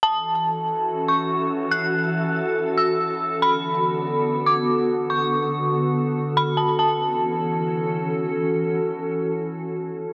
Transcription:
<<
  \new Staff \with { instrumentName = "Synth bell" } { \time 4/4 \key fis \minor \tempo 4 = 142 a''2~ a''8 cis'''8 r4 | fis'''2~ fis'''8 e'''4. | b''2~ b''8 d'''8 r4 | cis'''2 r4 b''8 a''8 |
a''2. r4 | r1 | }
  \new Staff \with { instrumentName = "Synth texture" } { \time 4/4 \key fis \minor << { <e'' a''>1~ | <e'' a''>1 | <d'' b''>1 | r1 |
r1 | r1 | } \\ { fis'1~ | fis'1~ | fis'1 | r1 |
r1 | r1 | } >> }
  \new Staff \with { instrumentName = "Ambient pad" } { \time 4/4 \key fis \minor << { <fis' a'>1~ | <fis' a'>1~ | <fis' a'>1~ | <fis' a'>1 |
<e cis' fis' a'>1~ | <e cis' fis' a'>1 | } \\ { <e cis'>1~ | <e cis'>1 | <d b>1~ | <d b>1 |
r1 | r1 | } >> }
>>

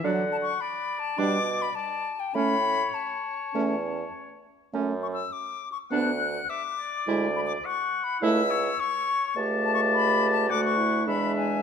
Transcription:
<<
  \new Staff \with { instrumentName = "Flute" } { \time 4/4 \key a \mixolydian \tempo 4 = 104 \tuplet 3/2 { r8. a''16 cis'''8 b''4 a''8 } d'''8. b''16 a''8. g''16 | b''4 a''2 r4 | \key a \major \tuplet 3/2 { r8. cis'''16 e'''8 d'''4 cis'''8 } fis'''4 d'''4 | \tuplet 3/2 { r8. b''16 d'''8 cis'''4 b''8 } e'''4 cis'''4 |
\tuplet 3/2 { r8. a''16 cis'''8 b''4 a''8 } d'''16 cis'''8. b''8 gis''8 | }
  \new Staff \with { instrumentName = "Oboe" } { \time 4/4 \key a \mixolydian fis''4 d''2 d''8 r8 | cis''2.~ cis''8 r8 | \key a \major r2 fis''4 e''8 d''8~ | d''4 fis''4 e''8 cis''4. |
a''2 fis''4 e''4 | }
  \new Staff \with { instrumentName = "Clarinet" } { \time 4/4 \key a \mixolydian d'8 r4. d'8 r4. | cis'8 r4. cis'8 r4. | \key a \major cis'8 r4. d'8 r4. | e'8 r4. e'8 r4. |
g'2 fis'8 e'8 d'4 | }
  \new Staff \with { instrumentName = "French horn" } { \time 4/4 \key a \mixolydian fis8 r4. g8 r4. | a8 r4. a8 r4. | \key a \major a8 r4. b8 r4. | gis8 r4. a8 r4. |
a2 a4 gis4 | }
  \new Staff \with { instrumentName = "Bassoon" } { \clef bass \time 4/4 \key a \mixolydian d4 r4 b,4 r4 | a,4 r4 e,4 r4 | \key a \major fis,4 r4 d,4 r4 | d,4 r4 cis,4 r4 |
cis,2 d,4 e,4 | }
>>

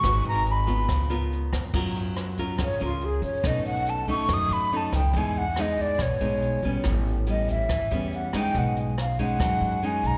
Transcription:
<<
  \new Staff \with { instrumentName = "Flute" } { \time 4/4 \key des \mixolydian \tempo 4 = 141 des'''8 bes''8 ces'''4. r4. | \key b \lydian r2 cis''8 eis'8 gis'8 cis''8 | dis''8 fis''8 a''8 cis'''8 dis'''8 b''8 a''8 g''8 | gis''8 fis''8 dis''8 d''8 cis''2 |
r4 dis''8 e''4. fis''8 g''8 | fis''8 r8 eis''8 fis''4. gis''8 ais''8 | }
  \new Staff \with { instrumentName = "Nylon-string guitar" } { \time 4/4 \key des \mixolydian << { <ees' ges' ces''>4 r8 <ces' f'>4 <ces' f' bes'>4. | \key b \lydian <cis' eis' ais'>4. <cis' eis' ais'>4 <cis' eis' ais'>4. | <a cis' dis'>4. <a cis' dis'>4. <a cis' dis'>8 r8 | <gis b dis'>8 r8 <gis b dis'>4 r8 <gis b dis'>4 <g b cis'>8~ |
<g b cis'>4 <g b cis'>4 r8 <g b cis'>4 <gis cis' dis'>8~ | <gis cis' dis'>4 r8 <gis cis' dis'>4. <gis cis' dis'>4 | } \\ { aes2 des2 | fis2 cis2 | b,2 fis2 | e2 b,2 |
a,2 e2 | b,2 fis2 | } >> }
  \new Staff \with { instrumentName = "Upright bass" } { \clef bass \time 4/4 \key des \mixolydian aes,,8 aes,,4. des,4. f,8 | \key b \lydian fis,2 cis,8 cis,4 fis,8 | b,,2 fis,8 fis,4 cis,8 | e,2 b,,8 b,,4 ais,,8 |
a,,2 e,8 e,4 fis,8 | b,,2 fis,8 fis,4 b,,8 | }
  \new DrumStaff \with { instrumentName = "Drums" } \drummode { \time 4/4 <hh bd ss>8 hh8 hh8 <hh bd>8 <hh bd ss>8 hh8 hh8 <hh bd ss>8 | <cymc bd>8 hh8 <hh ss>8 <hh bd>8 <hh bd ss>8 hh8 hh8 <hh bd>8 | <hh bd ss>8 hh8 hh8 <hh bd>8 <hh bd ss>8 hh8 hh8 <hh bd ss>8 | <hh bd>8 hh8 <hh ss>8 <hh bd>8 <hh bd ss>8 hh8 hh8 <hh bd>8 |
<hh bd ss>8 hh8 hh8 <hh bd>8 <hh bd ss>8 hh8 hh8 <hh bd ss>8 | <hh bd>8 hh8 <hh ss>8 <hh bd>8 <hh bd ss>8 hh8 hh8 <hh bd>8 | }
>>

